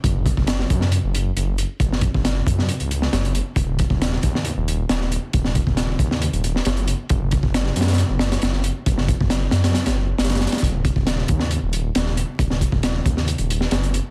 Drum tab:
HH |x---x---x---x---x---x---x---x---|x---x---x---x---x-x-x---x-x-x---|x---x---x---x---x---x---x---x---|x---x---x---x---x-x-x---x-x-x---|
SD |--------o-o---o-----------------|--o-----o-----o-------o-o-------|--------o-o---o---------o-o-----|--o-----o-----o-------o-o-------|
BD |o---o-o-----o-------------------|o---o-o-----o-------------------|o---o-o-----o-------------------|o---o-o-----o-------------------|

HH |x---x---x---xxxxx---x-x-x---x---|x---x---x---x-x-x-x-----xxxxxxxx|x---x---x---x---x---x---x---x---|x---x---x---x---x-x-x---x-x-x---|
SD |--------o-o--ooo----o-o-o-o-----|--o-----o---o-o-o-o-----oooooooo|--------o-o---o---------o-o-----|--o-----o-----o-------o-o-------|
BD |o---o-o-------------------------|o---o-o-------------------------|o---o-o-----o-------------------|o---o-o-----o-------------------|